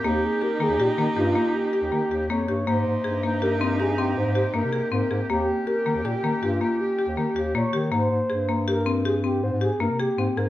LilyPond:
<<
  \new Staff \with { instrumentName = "Soft synth lead" } { \time 7/4 \key aes \major \tempo 4 = 160 g'8 aes'8 bes'8 aes'8 g'4 f'4 g'2 des''4 | c''2 bes'8 bes'8 aes'8 g'8 c''4 bes'4 bes'4 | g'4 bes'4 g'4 f'4 g'2 des''4 | c''2 bes'4 aes'8 g'8 c''8 aes'8 bes'8 g'4 bes'8 | }
  \new Staff \with { instrumentName = "Marimba" } { \time 7/4 \key aes \major bes4 g'8 bes8 g'8 bes8 g'8 bes4 g'8 bes8 g'8 bes8 g'8 | bes4 aes'8 bes8 g'8 c'8 g'8 c'4 g'8 bes8 aes'8 c'8 aes'8 | bes4 g'8 bes8 g'8 bes8 g'8 bes4 g'8 bes8 g'8 bes8 g'8 | bes4 aes'8 bes8 g'8 c'8 g'8 c'4 g'8 bes8 aes'8 c'8 aes'8 | }
  \new Staff \with { instrumentName = "Viola" } { \time 7/4 \key aes \major ees'1.~ ees'8 r8 | ees'1.~ ees'4 | r1. r4 | r1. r4 | }
  \new Staff \with { instrumentName = "Woodwind section" } { \time 7/4 \key aes \major <ees des' g'>1.~ <ees des' g'>4 | <c bes g'>1.~ <c bes g'>4 | <ees des' g'>1.~ <ees des' g'>4 | r1. r4 | }
  \new Staff \with { instrumentName = "Bass clarinet" } { \clef bass \time 7/4 \key aes \major ees,8 r4 ees16 ees,16 bes,16 r16 ees16 r16 g,8 r4 r16 ees,16 ees16 r16 ees,8 f,8 g,8 | aes,8 aes,16 r16 g,2. aes,16 aes,8 r16 g,16 c8 r16 aes,16 r16 aes,16 r16 | ees,8 r4 ees16 ees,16 bes,16 r16 ees16 r16 g,8 r4 r16 ees,16 ees16 r16 ees,8 bes,16 r16 ees8 | aes,8 aes,16 r16 g,2. aes,16 aes,8 r16 g,16 c8 r16 aes,16 r16 aes,16 r16 | }
>>